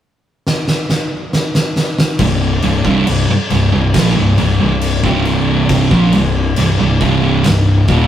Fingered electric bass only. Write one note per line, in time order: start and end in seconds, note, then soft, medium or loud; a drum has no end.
2.19 2.60 C1 medium
2.64 2.84 C1 medium
2.85 3.05 C1 medium
3.08 3.28 C1 medium
3.29 muted fingered electric bass stroke soft
3.51 3.71 C1 medium
3.73 3.93 C1 medium
3.94 4.15 A#1 medium
4.17 4.37 C1 medium
4.39 4.59 C1 medium
4.61 5.01 C1 medium
5.04 5.88 C1 loud
5.91 6.12 A#1 medium
6.14 6.55 C1 medium
6.57 6.78 C1 medium
6.79 7.00 C1 medium
7.01 7.42 C1 medium
7.45 7.86 C1 medium
7.89 8.07 D#1 loud